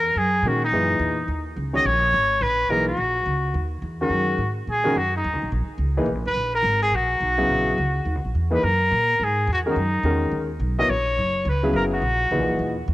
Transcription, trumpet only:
0, 0, Header, 1, 2, 480
1, 0, Start_track
1, 0, Tempo, 282353
1, 1227, Time_signature, 4, 2, 24, 8
1, 21996, End_track
2, 0, Start_track
2, 0, Title_t, "Trumpet"
2, 0, Program_c, 0, 56
2, 0, Note_on_c, 0, 70, 103
2, 299, Note_on_c, 0, 68, 84
2, 325, Note_off_c, 0, 70, 0
2, 803, Note_on_c, 0, 66, 74
2, 828, Note_off_c, 0, 68, 0
2, 1065, Note_off_c, 0, 66, 0
2, 1088, Note_on_c, 0, 63, 77
2, 2431, Note_off_c, 0, 63, 0
2, 2988, Note_on_c, 0, 75, 95
2, 3158, Note_on_c, 0, 73, 115
2, 3183, Note_off_c, 0, 75, 0
2, 4109, Note_on_c, 0, 71, 92
2, 4135, Note_off_c, 0, 73, 0
2, 4589, Note_on_c, 0, 70, 81
2, 4614, Note_off_c, 0, 71, 0
2, 4869, Note_off_c, 0, 70, 0
2, 4879, Note_on_c, 0, 66, 83
2, 6242, Note_off_c, 0, 66, 0
2, 6821, Note_on_c, 0, 66, 81
2, 7696, Note_off_c, 0, 66, 0
2, 7983, Note_on_c, 0, 68, 83
2, 8453, Note_on_c, 0, 66, 85
2, 8478, Note_off_c, 0, 68, 0
2, 8722, Note_off_c, 0, 66, 0
2, 8771, Note_on_c, 0, 63, 76
2, 9362, Note_off_c, 0, 63, 0
2, 10649, Note_on_c, 0, 71, 94
2, 11083, Note_off_c, 0, 71, 0
2, 11123, Note_on_c, 0, 70, 91
2, 11560, Note_off_c, 0, 70, 0
2, 11597, Note_on_c, 0, 68, 90
2, 11811, Note_on_c, 0, 66, 84
2, 11837, Note_off_c, 0, 68, 0
2, 14195, Note_off_c, 0, 66, 0
2, 14489, Note_on_c, 0, 71, 89
2, 14677, Note_on_c, 0, 70, 100
2, 14703, Note_off_c, 0, 71, 0
2, 15698, Note_on_c, 0, 68, 79
2, 15723, Note_off_c, 0, 70, 0
2, 16139, Note_off_c, 0, 68, 0
2, 16189, Note_on_c, 0, 66, 78
2, 16300, Note_off_c, 0, 66, 0
2, 16497, Note_on_c, 0, 63, 75
2, 17819, Note_off_c, 0, 63, 0
2, 18337, Note_on_c, 0, 75, 92
2, 18521, Note_on_c, 0, 73, 103
2, 18546, Note_off_c, 0, 75, 0
2, 19476, Note_off_c, 0, 73, 0
2, 19525, Note_on_c, 0, 71, 84
2, 19946, Note_off_c, 0, 71, 0
2, 19990, Note_on_c, 0, 70, 77
2, 20112, Note_off_c, 0, 70, 0
2, 20281, Note_on_c, 0, 66, 87
2, 21637, Note_off_c, 0, 66, 0
2, 21996, End_track
0, 0, End_of_file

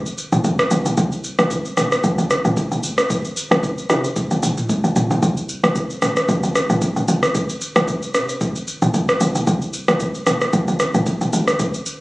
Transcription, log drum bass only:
0, 0, Header, 1, 2, 480
1, 0, Start_track
1, 0, Tempo, 530973
1, 883, Time_signature, 4, 2, 24, 8
1, 10853, End_track
2, 0, Start_track
2, 0, Title_t, "Log drum bass"
2, 0, Program_c, 0, 39
2, 0, Note_on_c, 0, 36, 91
2, 240, Note_off_c, 0, 36, 0
2, 293, Note_on_c, 0, 34, 101
2, 386, Note_off_c, 0, 34, 0
2, 401, Note_on_c, 0, 36, 102
2, 607, Note_off_c, 0, 36, 0
2, 643, Note_on_c, 0, 36, 105
2, 755, Note_off_c, 0, 36, 0
2, 774, Note_on_c, 0, 34, 90
2, 867, Note_off_c, 0, 34, 0
2, 882, Note_on_c, 0, 36, 109
2, 1200, Note_off_c, 0, 36, 0
2, 1256, Note_on_c, 0, 36, 97
2, 1552, Note_off_c, 0, 36, 0
2, 1602, Note_on_c, 0, 34, 93
2, 1807, Note_off_c, 0, 34, 0
2, 1842, Note_on_c, 0, 36, 94
2, 1955, Note_off_c, 0, 36, 0
2, 1973, Note_on_c, 0, 36, 94
2, 2179, Note_off_c, 0, 36, 0
2, 2213, Note_on_c, 0, 36, 95
2, 2306, Note_off_c, 0, 36, 0
2, 2454, Note_on_c, 0, 34, 83
2, 2562, Note_on_c, 0, 38, 89
2, 2575, Note_off_c, 0, 34, 0
2, 2767, Note_off_c, 0, 38, 0
2, 3175, Note_on_c, 0, 36, 100
2, 3472, Note_off_c, 0, 36, 0
2, 3522, Note_on_c, 0, 48, 100
2, 3727, Note_off_c, 0, 48, 0
2, 3896, Note_on_c, 0, 36, 91
2, 3988, Note_off_c, 0, 36, 0
2, 4002, Note_on_c, 0, 34, 97
2, 4115, Note_off_c, 0, 34, 0
2, 4375, Note_on_c, 0, 36, 89
2, 4467, Note_off_c, 0, 36, 0
2, 4484, Note_on_c, 0, 36, 93
2, 4596, Note_off_c, 0, 36, 0
2, 4616, Note_on_c, 0, 34, 99
2, 4708, Note_off_c, 0, 34, 0
2, 4724, Note_on_c, 0, 36, 114
2, 5041, Note_off_c, 0, 36, 0
2, 5094, Note_on_c, 0, 36, 102
2, 5391, Note_off_c, 0, 36, 0
2, 5443, Note_on_c, 0, 33, 91
2, 5648, Note_off_c, 0, 33, 0
2, 5682, Note_on_c, 0, 36, 100
2, 5795, Note_off_c, 0, 36, 0
2, 5816, Note_on_c, 0, 36, 87
2, 6020, Note_off_c, 0, 36, 0
2, 6054, Note_on_c, 0, 36, 96
2, 6147, Note_off_c, 0, 36, 0
2, 6294, Note_on_c, 0, 33, 89
2, 6386, Note_off_c, 0, 33, 0
2, 6404, Note_on_c, 0, 36, 101
2, 6608, Note_off_c, 0, 36, 0
2, 7015, Note_on_c, 0, 36, 91
2, 7364, Note_on_c, 0, 48, 90
2, 7378, Note_off_c, 0, 36, 0
2, 7602, Note_on_c, 0, 36, 94
2, 7616, Note_off_c, 0, 48, 0
2, 7920, Note_off_c, 0, 36, 0
2, 7975, Note_on_c, 0, 34, 98
2, 8067, Note_off_c, 0, 34, 0
2, 8082, Note_on_c, 0, 36, 97
2, 8287, Note_off_c, 0, 36, 0
2, 8324, Note_on_c, 0, 36, 106
2, 8436, Note_off_c, 0, 36, 0
2, 8455, Note_on_c, 0, 34, 88
2, 8547, Note_off_c, 0, 34, 0
2, 8563, Note_on_c, 0, 36, 105
2, 8881, Note_off_c, 0, 36, 0
2, 8935, Note_on_c, 0, 36, 96
2, 9232, Note_off_c, 0, 36, 0
2, 9282, Note_on_c, 0, 34, 92
2, 9487, Note_off_c, 0, 34, 0
2, 9522, Note_on_c, 0, 36, 97
2, 9635, Note_off_c, 0, 36, 0
2, 9655, Note_on_c, 0, 36, 96
2, 9860, Note_off_c, 0, 36, 0
2, 9894, Note_on_c, 0, 36, 99
2, 9987, Note_off_c, 0, 36, 0
2, 10135, Note_on_c, 0, 34, 94
2, 10227, Note_off_c, 0, 34, 0
2, 10243, Note_on_c, 0, 38, 89
2, 10448, Note_off_c, 0, 38, 0
2, 10853, End_track
0, 0, End_of_file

